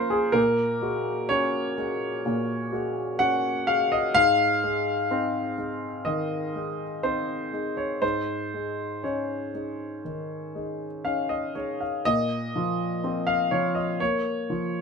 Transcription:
Already playing: F3 A#3 C#4 F4 A#4 C5 C#5
0.10 G#4
0.32 A#2 A#4
0.81 G#3 F#4
1.29 C#4 F#4 C#5
1.78 G#3 F#4
2.26 A#2
2.72 G#3 F#4
3.19 C#4 F#4 F#5
3.67 G#3 F#4 F5
3.92 D#5
4.14 G#2 F5
4.64 G#3 D#4
5.11 C4 D#4
5.58 G#3 D#4
6.05 D#3 D#5
6.55 G#3 D#4
7.03 C4 D#4 C5
7.53 G#3 D#4
7.77 C#5
8.02 G#2 C5
8.54 G#3 D#4
9.03 C#4 D#4 C#5
9.54 G#3 D#4
10.05 D#3
10.55 G#3 D#4
11.05 C#4 D#4 F5
11.29 D#5
11.55 G#3 D#4 C#5
11.81 F5
12.05 A#2 D#5
12.56 F3 F4
13.04 C4 F4
13.27 F5
13.51 F3 F4 C#5
13.75 D#5
14.00 A#3 C#5
14.50 F3 F4

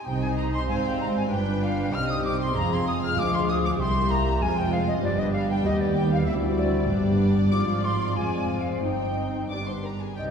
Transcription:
0.04 C2 C3 G3 D#4 C5 D#5 G5
0.22 G#5
0.37 A#5
0.53 C6
0.68 G#1 G#2 C4 F5 G#5
0.85 G5
1.00 A#5
1.16 G#5
1.31 G1 G2 D4 F4 B4 G5
1.62 F5
1.92 C2 C3 C4 D#4 G4 D#5 F6
2.09 D#6
2.24 D6
2.41 C6
2.55 F1 F2 G#3 F4 G#4 F5 A#5
2.73 C6
2.88 D#6
3.03 F6
3.18 D2 F3 G#4 D6
3.34 C6
3.49 D#6
3.65 D6
3.79 C2 G3 A#3 E4 G4 E5 C6
4.11 A#5
4.40 F1 F2 G#3 C4 F4 C5 G#5
4.57 G5
4.72 F5
4.88 D#5
5.02 G1 G2 G3 B3 D4 G4 B4 D5
5.19 D#5
5.33 F5
5.50 G5
5.64 D#2 G4 B4 D#5
5.81 D5
5.96 G5
6.12 F5
6.26 D2 G3 C4 E4 F#4 D5 E5
6.57 D5
6.89 G1 G2 B3 D4 G4
7.52 G#1 G#2 F3 C4 F4 D6
7.84 C6
8.15 F1 F2 G#3 F4 G#5
8.60 F5
8.83 G1 G2 C4 D#4 C5 G5
9.50 G1 G2 G3 B3 D4 B4 D5 D6
9.66 C5 C6
9.83 A#4 A#5
10.00 G#4 G#5
10.16 C2 C3 C4 D#4 G4 D5 D#5 G5 G6

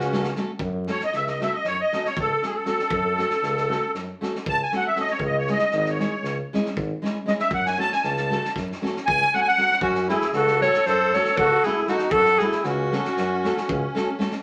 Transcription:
Already playing: C#2 C#4 F#4
0.00 snare
0.12 A3 C#4 F#4 A4, snare
0.24 snare
0.36 A3 C#4 F#4 A4, snare
0.59 F#2, kick
0.87 A3 C#4 F#4 A4 C#5, snare
1.00 D#5, snare
1.13 C#2 E5, snare
1.27 D#5, snare
1.40 A3 C#4 F#4 A4 E5, snare
1.53 D#5
1.64 F#2 C#5, snare
1.80 D#5
1.93 A3 C#4 F#4 A4, snare
2.05 C#5, snare
2.17 C#2 A4, kick
2.42 A3 C#4 F#4 G#4 A4, snare
2.55 A4
2.65 A3 C#4 F#4 A4, snare
2.79 snare
2.90 F#2, kick
3.16 A3 C#4 F#4 A4, snare
3.30 snare
3.43 C#2, snare
3.57 snare
3.68 A3 C#4 F#4 A4, snare
3.95 F#2, snare
4.21 A3 C#4 F#4 A4, snare
4.35 snare
4.46 C#2 A5, kick
4.63 G#5
4.72 A3 C#4 F#4 A4, snare
4.76 F#5
4.87 E5
4.96 A3 C#4 F#4 A4, snare
5.00 D#5
5.07 C#5, snare
5.19 C#2, kick
5.26 D#5
5.38 C#5
5.47 G#3 C#4 E4 G#4, snare
5.51 D#5
5.59 snare
5.71 G#1, snare
5.76 D#5
5.85 snare
5.90 C#5
5.99 G#3 C#4 E4 G#4, snare
6.23 C#2, snare
6.53 G#3 C#4 E4 G#4, snare
6.66 snare
6.76 G#1, kick
7.02 G#3 C#4 E4 G#4, snare
7.26 G#3 C#4 E4 G#4 D#5, snare
7.39 E5, snare
7.51 F#2 F#5, kick
7.66 G#5, snare
7.78 A3 C#4 F#4 A4 A5, snare
7.92 G#5, snare
8.03 C#2 A5, snare
8.17 snare
8.30 A3 C#4 F#4 A4, snare
8.45 snare
8.56 F#2, kick, snare
8.72 snare
8.82 A3 C#4 F#4 A4, snare
8.97 snare
9.06 C#2 G#5, kick
9.22 snare
9.33 A3 C#4 F#4 A4 F#5
9.41 G#5
9.47 F#5
9.57 A3 C#4 F#4 A4, snare
9.71 snare
9.81 F#2 C#4 F#4, kick
9.95 snare
10.08 A3 C#4 E4 F#4 G#4 A4, snare
10.21 snare
10.33 C#2 F#4 A4, snare
10.47 snare
10.61 A3 C#4 F#4 A4 C#5, snare
10.74 snare
10.86 F#2 A4 C5, snare
11.13 A3 C#4 F#4 A4 C#5, snare
11.25 snare
11.37 C#2 F#4 A4, kick
11.63 A3 C#4 E4 F#4 G#4 A4, snare
11.87 A3 C#4 D#4 F#4 A4, snare
11.98 snare
12.11 F#2 F#4 A4, kick
12.25 snare
12.39 A3 C#4 E4 F#4 G#4 A4, snare
12.52 snare
12.64 C#2 C#4 F#4, snare
12.92 A3 C#4 F#4 A4, snare
13.05 snare
13.17 F#2, snare
13.44 A3 C#4 F#4 A4, snare
13.57 snare
13.68 C#2, kick
13.95 A3 C#4 F#4 A4, snare
14.19 A3 C#4 F#4 A4, snare
14.31 snare

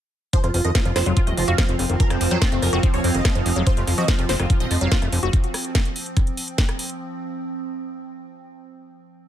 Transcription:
0.33 F3 C4 F4 C5, kick, closed hi-hat
0.44 F1 F3 F4, cross-stick, closed hi-hat
0.54 F1 F3 F4, open hi-hat
0.65 F2 D#3 D#5, closed hi-hat
0.75 F3 F4 C5, kick, snare, closed hi-hat
0.85 F1 F3 F4, closed hi-hat
0.96 F1 F3 C5, cross-stick, snare, open hi-hat
1.06 F1 F#3 F4, closed hi-hat
1.17 F4, kick, closed hi-hat
1.27 D#1 A3 D#5, closed hi-hat
1.37 F1 F3 F4, open hi-hat
1.48 F1 F#4 F5, closed hi-hat
1.58 F3, kick, cross-stick, snare, closed hi-hat
1.69 F1 F3, closed hi-hat
1.79 F1 F3, open hi-hat
1.90 F1 D#3, closed hi-hat
2.00 F3 A#4, kick, closed hi-hat
2.10 F1 F3 C4, cross-stick, closed hi-hat
2.21 F1 F3 C4, open hi-hat
2.31 F2 F#3 C5, closed hi-hat
2.42 C4 F4, kick, snare, closed hi-hat
2.52 F1 A3 C4, closed hi-hat
2.62 F1 F3 A#4, open hi-hat
2.73 F1 C4 F#4, cross-stick, closed hi-hat
2.83 F3 C4, kick, closed hi-hat
2.94 D#1 F3 C#5, closed hi-hat
3.04 F1 F3 C4, open hi-hat
3.15 F1 D#3 D#5, closed hi-hat
3.25 F3, kick, cross-stick, snare, closed hi-hat
3.35 F1 F3, closed hi-hat
3.46 F1 F3, open hi-hat
3.56 F1 F#3, closed hi-hat
3.67 F4 C5, kick, closed hi-hat
3.77 F1 A3 F4, closed hi-hat
3.87 F1 F3 F4, cross-stick, open hi-hat
3.98 F2 F#4 D#5, closed hi-hat
4.08 F3 F4, kick, snare, closed hi-hat
4.19 F1 F3 F4, closed hi-hat
4.29 F1 F3 C5, snare, open hi-hat
4.39 F1 D#3 F4, cross-stick, closed hi-hat
4.50 F3 F4, kick, closed hi-hat
4.60 D#1 F3 D#5, closed hi-hat
4.71 F1 F3 F4, open hi-hat
4.81 F1 F#3 F5, closed hi-hat
4.92 F4, kick, snare, closed hi-hat
5.02 F1 A3, cross-stick, closed hi-hat
5.12 F1 F3, open hi-hat
5.23 F1 F#4, closed hi-hat
5.33 kick, closed hi-hat
5.44 closed hi-hat
5.54 cross-stick, open hi-hat
5.65 closed hi-hat
5.75 kick, snare, closed hi-hat
5.85 closed hi-hat
5.96 open hi-hat
6.06 closed hi-hat
6.17 kick, cross-stick, closed hi-hat
6.27 closed hi-hat
6.37 open hi-hat
6.48 closed hi-hat
6.58 kick, snare, closed hi-hat
6.69 cross-stick, closed hi-hat
6.79 open hi-hat
6.90 closed hi-hat

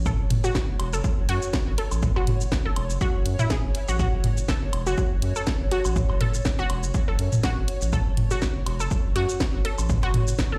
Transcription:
Already playing: A1 C#5
0.06 A4, kick, mid tom, shaker
0.19 F#1
0.30 F#1, closed hi-hat, mid tom
0.44 F#4, shaker
0.55 kick, snare, shaker
0.69 F#1
0.80 E1, closed hi-hat, low woodblock
0.93 F#1 A4, shaker
1.04 kick, shaker
1.18 F#1
1.29 F#2 F#4, closed hi-hat
1.42 shaker
1.53 kick, snare, closed hi-hat, shaker
1.67 G#1
1.78 A4, closed hi-hat
1.92 A1, low woodblock, shaker
2.03 kick, mid tom, shaker
2.16 F#1 F#4, low woodblock
2.27 F#1, closed hi-hat, mid tom
2.41 shaker
2.52 kick, snare, shaker
2.65 F#1 A4
2.76 E1, closed hi-hat, low woodblock
2.90 F#1, shaker
3.01 F#4, kick, shaker
3.15 F#1
3.26 F#2, closed hi-hat
3.39 E4, mid tom, shaker
3.50 G#4, kick, snare, closed hi-hat, shaker
3.64 G#1
3.75 closed hi-hat
3.88 A1 F#4, shaker
3.99 F#4, kick, mid tom, shaker
4.13 F#1
4.24 F#1, closed hi-hat, mid tom
4.37 shaker
4.49 A4, kick, snare, shaker
4.62 F#1
4.73 E1, closed hi-hat, low woodblock
4.87 F#1 F#4, shaker
4.98 kick, shaker
5.11 F#1
5.22 F#2, closed hi-hat
5.36 A4, shaker
5.47 kick, snare, closed hi-hat, shaker
5.61 G#1
5.71 F#4, closed hi-hat
5.85 A1, low woodblock, shaker
5.96 kick, mid tom, shaker
6.10 F#1, low woodblock
6.21 F#1 A4, closed hi-hat, mid tom
6.34 shaker
6.45 kick, snare, shaker
6.59 F#1 F#4
6.70 E1, closed hi-hat, low woodblock
6.83 F#1, shaker
6.94 kick, shaker
7.08 F#1 A4
7.19 F#2, closed hi-hat
7.32 mid tom, shaker
7.43 F#4, kick, snare, closed hi-hat, shaker
7.57 G#1
7.68 closed hi-hat
7.82 A1, shaker
7.93 A4, kick, mid tom, shaker
8.06 F#1
8.17 F#1, closed hi-hat, mid tom
8.31 F#4, shaker
8.42 kick, snare, shaker
8.55 F#1
8.66 E1, closed hi-hat, low woodblock
8.80 F#1 A4, shaker
8.91 kick, shaker
9.05 F#1
9.16 F#2 F#4, closed hi-hat
9.29 shaker
9.40 kick, snare, closed hi-hat, shaker
9.54 G#1
9.65 A4, closed hi-hat
9.78 A1, low woodblock, shaker
9.89 kick, mid tom, shaker
10.03 F#1 F#4, closed hi-hat, low woodblock
10.14 F#1, closed hi-hat, mid tom
10.28 shaker
10.39 kick, snare, shaker
10.52 F#1 A4

